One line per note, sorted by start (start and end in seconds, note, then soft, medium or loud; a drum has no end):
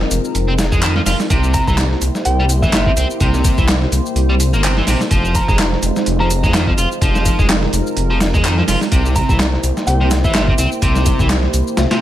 0.00 1.27 G#3 medium
0.00 1.27 C4 medium
0.00 1.27 D#4 medium
0.00 1.27 F4 medium
0.00 1.28 A#4 medium
0.00 snare medium
0.11 0.20 F1 loud
0.11 closed hi-hat medium
0.11 open hi-hat medium
0.11 shaker medium
0.25 shaker soft
0.35 0.74 F1 medium
0.35 closed hi-hat medium
0.35 shaker soft
0.48 0.53 C4 medium
0.59 snare loud
0.59 closed hi-hat medium
0.59 open hi-hat medium
0.59 shaker medium
0.72 1.00 F2 loud
0.72 0.81 G#3 loud
0.72 kick loud
0.72 shaker soft
0.82 0.94 D#3 medium
0.82 clap loud
0.82 closed hi-hat medium
0.82 shaker soft
0.96 1.00 F3 medium
0.96 snare soft
1.06 1.15 F1 loud
1.06 1.16 F4 medium
1.06 snare medium
1.06 open hi-hat medium
1.06 shaker medium
1.20 snare medium
1.20 shaker soft
1.30 1.60 C2 loud
1.30 1.66 C3 medium
1.30 5.07 A#3 medium
1.30 5.07 E4 medium
1.30 5.07 G4 medium
1.30 6.98 C5 medium
1.30 kick loud
1.30 closed hi-hat medium
1.30 shaker soft
1.44 shaker soft
1.54 1.62 A#5 medium
1.54 kick loud
1.54 closed hi-hat medium
1.54 open hi-hat medium
1.54 shaker medium
1.67 1.96 C2 loud
1.67 1.75 E3 medium
1.67 1.74 A#5 medium
1.67 kick loud
1.67 shaker soft
1.78 snare loud
1.78 clap loud
1.78 closed hi-hat medium
1.78 shaker soft
1.91 snare soft
2.01 2.10 C2 loud
2.01 closed hi-hat medium
2.01 open hi-hat medium
2.01 shaker medium
2.15 snare medium
2.15 shaker soft
2.25 2.64 C2 medium
2.25 2.39 G5 medium
2.25 closed hi-hat medium
2.25 shaker soft
2.40 2.44 G3 medium
2.49 closed hi-hat medium
2.49 open hi-hat medium
2.49 shaker medium
2.62 2.91 G1 loud
2.62 2.72 E3 loud
2.62 3.10 E5 loud
2.62 kick loud
2.62 shaker soft
2.73 2.85 A#2 medium
2.73 snare loud
2.73 clap loud
2.73 closed hi-hat medium
2.73 shaker soft
2.86 2.91 C3 medium
2.86 kick loud
2.97 3.05 C2 loud
2.97 3.07 C4 medium
2.97 closed hi-hat medium
2.97 open hi-hat medium
2.97 shaker medium
3.10 shaker soft
3.20 3.50 C2 loud
3.20 3.57 C3 medium
3.20 kick loud
3.20 closed hi-hat medium
3.20 shaker soft
3.34 snare soft
3.34 shaker soft
3.45 kick loud
3.45 closed hi-hat medium
3.45 open hi-hat medium
3.45 shaker medium
3.58 3.86 C2 loud
3.58 3.65 E3 medium
3.58 kick loud
3.58 shaker soft
3.68 snare loud
3.68 clap loud
3.68 closed hi-hat medium
3.68 shaker soft
3.82 snare soft
3.92 4.00 C2 loud
3.92 closed hi-hat medium
3.92 open hi-hat medium
3.92 shaker medium
4.06 shaker soft
4.15 4.55 C2 medium
4.15 closed hi-hat medium
4.15 shaker soft
4.29 4.34 G3 medium
4.40 closed hi-hat medium
4.40 open hi-hat medium
4.40 shaker medium
4.53 4.81 G1 loud
4.53 4.61 A#3 medium
4.53 shaker soft
4.64 4.76 C3 medium
4.64 clap loud
4.64 closed hi-hat medium
4.64 shaker soft
4.77 4.85 E3 medium
4.77 snare soft
4.87 4.96 A#1 medium
4.87 4.99 C3 medium
4.87 snare medium
4.87 open hi-hat medium
4.87 shaker medium
5.01 snare medium
5.01 shaker soft
5.11 5.40 F1 loud
5.11 5.47 F3 medium
5.11 8.89 G#3 medium
5.11 8.89 C4 medium
5.11 8.89 D#4 medium
5.11 8.88 F4 medium
5.11 kick loud
5.11 closed hi-hat medium
5.11 shaker soft
5.25 shaker soft
5.35 5.44 A#5 medium
5.35 kick loud
5.35 closed hi-hat medium
5.35 open hi-hat medium
5.35 shaker medium
5.48 5.76 F1 loud
5.48 5.56 G#3 medium
5.48 5.55 A#5 medium
5.48 kick loud
5.48 shaker soft
5.59 snare loud
5.59 clap loud
5.59 closed hi-hat medium
5.59 shaker soft
5.72 snare soft
5.82 5.91 F1 loud
5.82 closed hi-hat medium
5.82 open hi-hat medium
5.82 shaker medium
5.96 snare medium
5.96 shaker soft
6.06 6.45 F1 medium
6.06 closed hi-hat medium
6.06 shaker soft
6.20 6.28 F3 medium
6.20 6.54 A#5 medium
6.30 closed hi-hat medium
6.30 open hi-hat medium
6.30 shaker medium
6.43 6.72 F2 loud
6.43 6.53 G#3 loud
6.43 kick loud
6.43 shaker soft
6.54 6.66 D#3 medium
6.54 snare loud
6.54 clap loud
6.54 closed hi-hat medium
6.54 shaker soft
6.67 6.72 F3 medium
6.67 kick loud
6.78 6.86 F1 loud
6.78 6.88 F4 medium
6.78 closed hi-hat medium
6.78 open hi-hat medium
6.78 shaker medium
6.92 shaker soft
7.02 7.31 F1 loud
7.02 7.38 F3 medium
7.02 8.90 A#4 medium
7.02 kick loud
7.02 closed hi-hat medium
7.02 shaker soft
7.15 snare soft
7.15 shaker soft
7.25 kick loud
7.25 closed hi-hat medium
7.25 open hi-hat medium
7.25 shaker medium
7.39 7.67 F1 loud
7.39 7.46 G#3 medium
7.39 kick loud
7.39 shaker soft
7.49 snare loud
7.49 clap loud
7.49 closed hi-hat medium
7.49 shaker soft
7.63 snare medium
7.73 7.81 F1 loud
7.73 closed hi-hat medium
7.73 open hi-hat medium
7.73 shaker medium
7.87 shaker soft
7.97 8.36 F1 medium
7.97 closed hi-hat medium
7.97 shaker soft
8.10 8.18 F3 medium
8.20 snare loud
8.20 closed hi-hat medium
8.20 open hi-hat medium
8.20 shaker medium
8.34 8.62 F2 loud
8.34 8.43 G#3 loud
8.34 kick loud
8.34 shaker soft
8.44 8.56 D#3 medium
8.44 clap loud
8.44 closed hi-hat medium
8.44 shaker soft
8.58 8.63 F3 medium
8.58 snare soft
8.68 8.77 F1 loud
8.68 8.78 F4 medium
8.68 snare soft
8.68 open hi-hat medium
8.68 shaker medium
8.81 snare medium
8.81 shaker soft
8.92 9.21 C2 loud
8.92 9.28 C3 medium
8.92 12.01 A#3 medium
8.92 12.01 E4 medium
8.92 12.01 G4 medium
8.92 12.01 C5 medium
8.92 kick loud
8.92 closed hi-hat medium
8.92 shaker soft
9.06 shaker soft
9.16 9.24 A#5 medium
9.16 kick loud
9.16 closed hi-hat medium
9.16 open hi-hat medium
9.16 shaker medium
9.28 9.57 C2 loud
9.28 9.37 E3 medium
9.28 9.36 A#5 medium
9.28 kick loud
9.28 shaker soft
9.39 snare loud
9.39 clap loud
9.39 closed hi-hat medium
9.39 shaker soft
9.53 snare soft
9.63 9.72 C2 loud
9.63 closed hi-hat medium
9.63 open hi-hat medium
9.63 shaker medium
9.77 snare medium
9.77 shaker soft
9.87 10.26 C2 medium
9.87 10.01 G5 loud
9.87 closed hi-hat medium
9.87 shaker soft
10.01 10.08 C3 medium
10.11 snare loud
10.11 closed hi-hat medium
10.11 open hi-hat medium
10.11 shaker medium
10.24 10.53 G1 loud
10.24 10.34 E3 loud
10.24 10.72 E5 loud
10.24 kick loud
10.24 shaker soft
10.35 10.47 A#2 medium
10.35 snare loud
10.35 clap loud
10.35 closed hi-hat medium
10.35 shaker soft
10.48 10.53 C3 medium
10.48 kick loud
10.58 10.67 C2 loud
10.58 10.69 C4 medium
10.58 closed hi-hat medium
10.58 open hi-hat medium
10.58 shaker medium
10.72 shaker soft
10.82 11.12 C2 loud
10.82 11.18 C3 medium
10.82 kick loud
10.82 closed hi-hat medium
10.82 shaker soft
10.96 snare soft
10.96 shaker soft
11.06 kick loud
11.06 closed hi-hat medium
11.06 open hi-hat medium
11.06 shaker medium
11.19 11.48 C2 loud
11.19 11.27 E3 medium
11.19 kick loud
11.19 shaker soft
11.29 snare loud
11.29 clap loud
11.29 closed hi-hat medium
11.29 shaker soft
11.43 snare soft
11.53 11.62 C2 loud
11.53 closed hi-hat medium
11.53 open hi-hat medium
11.53 shaker medium
11.67 shaker soft
11.77 11.86 C2 medium
11.77 snare loud
11.77 closed hi-hat medium
11.77 shaker soft
11.91 11.99 C3 medium
11.91 snare loud
11.91 closed hi-hat medium